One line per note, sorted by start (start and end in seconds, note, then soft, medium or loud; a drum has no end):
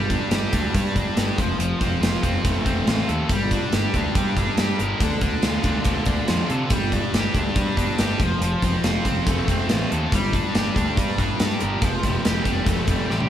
0.00 0.15 G1 medium
0.00 0.73 G3 medium
0.10 0.53 D4 medium
0.10 kick medium
0.10 closed hi-hat medium
0.31 0.45 G1 medium
0.31 1.16 G4 medium
0.31 snare loud
0.31 closed hi-hat medium
0.53 0.67 D2 medium
0.53 0.95 D4 medium
0.53 kick medium
0.53 closed hi-hat medium
0.74 0.88 G2 medium
0.74 1.39 G3 medium
0.74 kick loud
0.74 closed hi-hat medium
0.96 1.09 G1 medium
0.96 1.39 D4 medium
0.96 kick medium
0.96 closed hi-hat medium
1.17 1.30 G1 medium
1.17 1.39 G4 medium
1.17 snare medium
1.17 closed hi-hat medium
1.38 1.52 F1 medium
1.38 1.58 F3 medium
1.38 kick medium
1.38 closed hi-hat medium
1.59 1.73 F1 medium
1.59 2.66 F3 medium
1.59 closed hi-hat medium
1.79 1.94 F1 medium
1.79 2.22 C4 medium
1.79 kick medium
1.79 closed hi-hat medium
2.01 2.15 F1 medium
2.01 2.86 F4 medium
2.01 snare loud
2.01 closed hi-hat medium
2.23 2.37 F1 medium
2.23 2.64 C4 medium
2.23 kick medium
2.23 closed hi-hat medium
2.44 2.58 F1 medium
2.44 3.30 A3 medium
2.44 kick loud
2.44 closed hi-hat medium
2.65 2.79 F1 medium
2.65 3.30 C4 medium
2.65 kick medium
2.65 closed hi-hat medium
2.87 3.01 A1 medium
2.87 3.31 F4 medium
2.87 snare medium
2.87 closed hi-hat medium
2.99 snare soft
3.09 3.23 D#2 medium
3.09 3.30 A4 medium
3.09 closed hi-hat soft
3.29 3.56 G1 medium
3.29 4.16 G3 medium
3.29 kick loud
3.29 closed hi-hat medium
3.51 3.96 D4 medium
3.51 kick medium
3.51 closed hi-hat medium
3.72 3.86 G1 medium
3.72 4.58 G4 medium
3.72 snare loud
3.72 closed hi-hat medium
3.94 4.08 D2 medium
3.94 4.38 D4 medium
3.94 kick medium
3.94 closed hi-hat medium
4.15 4.29 G2 medium
4.15 5.01 G3 medium
4.15 kick loud
4.15 closed hi-hat medium
4.37 4.50 G1 medium
4.37 5.22 D4 medium
4.37 kick medium
4.37 closed hi-hat medium
4.57 4.72 G2 medium
4.57 5.01 G4 medium
4.57 snare loud
4.57 closed hi-hat medium
4.79 4.93 G1 medium
4.79 5.01 A#4 medium
4.79 closed hi-hat medium
5.00 5.13 D2 medium
5.00 5.85 D3 medium
5.00 kick loud
5.00 closed hi-hat medium
5.21 5.35 D2 medium
5.21 5.63 D4 medium
5.21 kick medium
5.21 closed hi-hat medium
5.42 5.57 D2 medium
5.42 6.28 F4 medium
5.42 snare loud
5.42 closed hi-hat medium
5.64 5.77 D2 medium
5.64 6.06 D4 medium
5.64 kick medium
5.64 closed hi-hat medium
5.84 5.99 D2 medium
5.84 6.71 D3 medium
5.84 kick loud
5.84 closed hi-hat medium
6.05 6.20 D2 medium
6.05 6.71 D4 medium
6.05 kick medium
6.05 closed hi-hat medium
6.28 6.42 F2 medium
6.28 6.72 F4 medium
6.28 snare loud
6.28 closed hi-hat medium
6.50 6.63 C3 medium
6.50 6.72 A4 medium
6.50 closed hi-hat medium
6.70 6.97 G1 medium
6.70 7.55 G3 medium
6.70 kick loud
6.70 closed hi-hat medium
6.92 7.34 D4 medium
6.92 kick medium
6.92 closed hi-hat medium
7.13 7.27 G1 medium
7.13 7.99 G4 medium
7.13 snare loud
7.13 closed hi-hat medium
7.34 7.48 D2 medium
7.34 7.76 D4 medium
7.34 kick medium
7.34 closed hi-hat medium
7.55 7.69 G2 medium
7.55 8.20 G3 medium
7.55 kick loud
7.55 closed hi-hat medium
7.77 7.91 G1 medium
7.77 8.20 D4 medium
7.77 kick medium
7.77 closed hi-hat medium
7.98 8.12 G1 medium
7.98 8.21 G4 medium
7.98 snare medium
7.98 closed hi-hat medium
8.20 8.33 F1 medium
8.20 8.41 F3 medium
8.20 kick loud
8.20 closed hi-hat medium
8.41 8.54 F1 medium
8.41 9.48 F3 medium
8.41 closed hi-hat medium
8.62 8.76 F1 medium
8.62 9.04 C4 medium
8.62 kick medium
8.62 closed hi-hat medium
8.84 8.97 F1 medium
8.84 9.70 F4 medium
8.84 snare loud
8.84 closed hi-hat medium
9.05 9.19 F1 medium
9.05 9.48 C4 medium
9.05 kick medium
9.05 closed hi-hat medium
9.26 9.40 F1 medium
9.26 10.12 A3 medium
9.26 kick loud
9.26 closed hi-hat medium
9.48 9.61 F1 medium
9.48 10.12 C4 medium
9.48 kick medium
9.48 closed hi-hat medium
9.69 9.84 A1 medium
9.69 10.13 F4 medium
9.69 snare loud
9.69 closed hi-hat medium
9.92 10.05 D#2 medium
9.92 10.13 A4 medium
9.92 closed hi-hat medium
10.12 10.38 G1 medium
10.12 10.98 G3 medium
10.12 kick loud
10.12 closed hi-hat medium
10.33 10.75 D4 medium
10.33 kick medium
10.33 closed hi-hat medium
10.54 10.69 G1 medium
10.54 11.39 G4 medium
10.54 snare loud
10.54 closed hi-hat medium
10.76 10.89 D2 medium
10.76 11.18 D4 medium
10.76 kick medium
10.76 closed hi-hat medium
10.97 11.10 G2 medium
10.97 11.85 G3 medium
10.97 kick loud
10.97 closed hi-hat medium
11.18 11.32 G1 medium
11.18 11.83 D4 medium
11.18 kick medium
11.18 closed hi-hat medium
11.40 11.53 G2 medium
11.40 11.85 G4 medium
11.40 snare loud
11.40 closed hi-hat medium
11.50 snare soft
11.60 11.75 G1 medium
11.60 11.82 A#4 medium
11.60 closed hi-hat medium
11.82 11.96 F1 medium
11.82 12.89 F3 medium
11.82 kick loud
11.82 closed hi-hat medium
12.03 12.17 F1 medium
12.03 12.46 G3 medium
12.03 kick medium
12.03 snare soft
12.03 closed hi-hat medium
12.25 12.39 F1 medium
12.25 13.08 G4 medium
12.25 snare loud
12.25 closed hi-hat medium
12.45 12.59 F1 medium
12.45 12.88 G3 medium
12.45 kick medium
12.45 closed hi-hat medium
12.66 12.80 F1 medium
12.66 13.29 A3 medium
12.66 kick loud
12.66 closed hi-hat medium
12.87 13.01 F1 medium
12.87 13.29 G3 medium
12.87 kick medium
12.87 closed hi-hat medium
13.10 13.24 A1 medium
13.10 13.29 G4 medium
13.10 snare soft
13.20 high tom medium